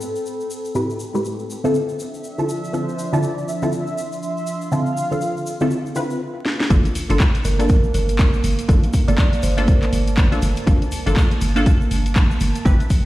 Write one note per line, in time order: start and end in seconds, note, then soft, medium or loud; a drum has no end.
0.00 2.43 C4 medium
0.00 2.97 A4 medium
0.00 2.98 G5 medium
0.00 1.50 B5 medium
0.00 shaker medium
0.16 shaker soft
0.26 shaker medium
0.40 shaker soft
0.50 shaker medium
0.65 shaker soft
0.75 0.95 A2 medium
0.75 0.95 C4 medium
0.75 0.95 E4 medium
0.75 0.95 G4 medium
0.75 0.96 B4 medium
0.75 shaker medium
0.90 shaker soft
1.00 shaker medium
1.14 1.48 A2 medium
1.14 1.48 C4 medium
1.14 1.48 E4 medium
1.14 1.49 G4 medium
1.14 1.49 B4 medium
1.14 shaker soft
1.25 shaker medium
1.39 shaker soft
1.50 6.21 D4 medium
1.50 shaker medium
1.64 1.82 D3 medium
1.64 1.82 C4 medium
1.64 1.82 E4 medium
1.64 1.82 F4 medium
1.64 1.82 A4 loud
1.64 shaker soft
1.73 4.18 E5 medium
1.73 shaker soft
1.89 6.21 F3 medium
1.89 shaker soft
1.99 shaker medium
2.14 shaker soft
2.24 shaker soft
2.38 2.48 D3 medium
2.38 2.48 C4 medium
2.38 2.48 E4 medium
2.38 2.48 F4 medium
2.38 2.49 A4 medium
2.38 shaker soft
2.49 shaker medium
2.64 shaker soft
2.73 3.09 D3 medium
2.73 3.10 C4 medium
2.73 3.10 E4 medium
2.73 3.10 F4 medium
2.73 3.10 A4 medium
2.73 3.15 C5 medium
2.73 shaker soft
2.89 shaker soft
2.99 shaker medium
3.13 3.59 D3 medium
3.13 3.59 C4 medium
3.13 3.59 E4 medium
3.13 3.59 F4 medium
3.13 3.59 A4 loud
3.13 3.50 D5 medium
3.13 shaker soft
3.23 shaker soft
3.38 shaker soft
3.43 6.21 C6 medium
3.48 3.72 E5 loud
3.48 shaker medium
3.62 3.72 D3 medium
3.62 3.72 C4 medium
3.62 3.72 E4 medium
3.62 3.72 F4 medium
3.62 3.73 A4 medium
3.62 shaker soft
3.72 4.19 E5 loud
3.72 shaker medium
3.87 shaker soft
3.98 shaker medium
4.03 6.21 F4 medium
4.12 shaker soft
4.23 4.69 E5 loud
4.23 shaker soft
4.37 shaker soft
4.47 shaker medium
4.61 shaker soft
4.72 4.92 D3 medium
4.72 4.92 C4 medium
4.72 4.92 E4 medium
4.72 4.92 F4 medium
4.72 4.92 A4 medium
4.72 6.17 F5 loud
4.72 shaker soft
4.86 shaker soft
4.97 shaker medium
5.11 5.57 D3 medium
5.11 5.57 C4 medium
5.11 5.58 D4 medium
5.11 5.58 F4 medium
5.11 5.58 A4 medium
5.11 shaker soft
5.21 shaker soft
5.37 shaker soft
5.46 shaker medium
5.60 5.79 D3 medium
5.60 5.79 C4 medium
5.60 5.79 E4 medium
5.60 5.79 F4 medium
5.60 5.79 A4 loud
5.60 shaker soft
5.71 shaker soft
5.86 shaker soft
5.96 6.21 D3 medium
5.96 6.21 C4 medium
5.96 6.21 E4 medium
5.96 6.21 F4 medium
5.96 6.21 B4 loud
5.96 shaker medium
6.10 shaker soft
6.45 snare medium
6.60 snare medium
6.70 6.82 G1 loud
6.70 7.06 A#3 medium
6.70 7.06 D4 medium
6.70 7.06 F4 medium
6.70 7.07 A4 medium
6.70 kick loud
6.70 closed hi-hat medium
6.70 shaker soft
6.85 closed hi-hat soft
6.85 shaker soft
6.92 12.65 A#3 medium
6.92 open hi-hat loud
6.92 shaker loud
7.09 7.18 G1 loud
7.09 7.56 A#3 medium
7.09 7.56 D4 medium
7.09 7.56 F4 medium
7.09 7.56 A4 loud
7.09 closed hi-hat medium
7.09 shaker soft
7.20 kick loud
7.20 clap loud
7.20 closed hi-hat medium
7.20 shaker medium
7.35 closed hi-hat soft
7.35 shaker soft
7.45 7.91 G1 medium
7.45 7.57 A#4 medium
7.45 open hi-hat loud
7.45 shaker loud
7.59 7.69 A#3 medium
7.59 7.69 D4 medium
7.59 7.69 F4 medium
7.59 7.69 A4 loud
7.59 7.66 A#4 medium
7.59 closed hi-hat medium
7.59 shaker soft
7.69 7.79 A#4 medium
7.69 kick loud
7.69 closed hi-hat medium
7.69 shaker medium
7.84 shaker soft
7.94 8.41 G1 medium
7.94 8.10 A#4 medium
7.94 open hi-hat loud
7.94 shaker medium
8.09 closed hi-hat medium
8.09 shaker soft
8.19 kick loud
8.19 clap loud
8.19 closed hi-hat medium
8.19 shaker medium
8.33 shaker soft
8.44 8.56 G1 medium
8.44 open hi-hat loud
8.44 shaker medium
8.59 13.05 A5 medium
8.59 closed hi-hat medium
8.59 shaker soft
8.68 8.81 G1 loud
8.68 8.88 A#3 medium
8.68 8.89 D4 medium
8.68 8.89 F4 medium
8.68 8.89 A4 medium
8.68 kick loud
8.68 closed hi-hat medium
8.68 shaker medium
8.83 closed hi-hat soft
8.83 shaker soft
8.93 kick medium
8.93 open hi-hat loud
8.93 shaker loud
9.08 9.16 G1 loud
9.08 9.54 A#3 medium
9.08 9.54 D4 medium
9.08 9.54 F4 medium
9.08 9.55 A4 medium
9.08 9.20 D5 medium
9.08 closed hi-hat medium
9.08 shaker soft
9.18 kick loud
9.18 clap loud
9.18 closed hi-hat medium
9.18 shaker medium
9.33 closed hi-hat soft
9.33 shaker soft
9.43 9.89 G1 medium
9.43 9.55 C5 medium
9.43 open hi-hat loud
9.43 shaker medium
9.57 9.75 A#3 loud
9.57 9.75 D4 medium
9.57 9.76 F4 medium
9.57 9.76 A4 loud
9.57 10.26 A#4 medium
9.57 closed hi-hat medium
9.57 shaker soft
9.68 kick loud
9.68 closed hi-hat medium
9.68 shaker medium
9.83 clap soft
9.83 closed hi-hat soft
9.83 shaker soft
9.93 10.39 G1 medium
9.93 open hi-hat loud
9.93 shaker loud
10.07 closed hi-hat medium
10.07 shaker soft
10.17 kick loud
10.17 clap loud
10.17 closed hi-hat medium
10.17 shaker medium
10.32 10.42 A#3 medium
10.32 10.42 D4 medium
10.32 10.42 F4 medium
10.32 10.42 A4 medium
10.32 closed hi-hat soft
10.32 shaker soft
10.42 10.54 G1 medium
10.42 open hi-hat loud
10.42 shaker medium
10.56 closed hi-hat medium
10.56 shaker soft
10.67 10.79 G1 loud
10.67 11.03 A#3 medium
10.67 11.03 D4 medium
10.67 11.03 F4 medium
10.67 11.03 A4 medium
10.67 kick loud
10.67 closed hi-hat medium
10.67 shaker medium
10.82 closed hi-hat soft
10.82 shaker soft
10.92 open hi-hat loud
10.92 shaker loud
11.06 11.15 G1 loud
11.06 11.52 A#3 medium
11.06 11.53 D4 medium
11.06 11.53 F4 medium
11.06 11.53 A4 medium
11.06 closed hi-hat medium
11.06 shaker soft
11.17 kick loud
11.17 clap loud
11.17 closed hi-hat medium
11.17 shaker medium
11.31 closed hi-hat soft
11.31 shaker soft
11.41 11.88 G1 medium
11.41 open hi-hat loud
11.41 shaker loud
11.56 11.65 A#3 medium
11.56 11.66 D4 medium
11.56 11.66 F4 medium
11.56 11.66 A4 loud
11.56 closed hi-hat medium
11.56 shaker soft
11.66 kick loud
11.66 closed hi-hat medium
11.66 shaker medium
11.81 shaker soft
11.91 12.37 G1 medium
11.91 open hi-hat loud
11.91 shaker medium
12.06 closed hi-hat soft
12.06 shaker soft
12.16 kick loud
12.16 clap loud
12.16 closed hi-hat medium
12.16 shaker medium
12.31 shaker soft
12.40 12.53 G1 medium
12.40 open hi-hat loud
12.40 shaker medium
12.55 closed hi-hat medium
12.55 shaker soft
12.65 12.77 A1 loud
12.65 12.85 C4 medium
12.65 12.85 E4 medium
12.65 12.86 G4 medium
12.65 13.05 G4 medium
12.65 12.86 B4 medium
12.65 kick loud
12.65 closed hi-hat medium
12.65 shaker medium
12.80 closed hi-hat soft
12.80 shaker soft
12.90 kick medium
12.90 open hi-hat loud
12.90 shaker medium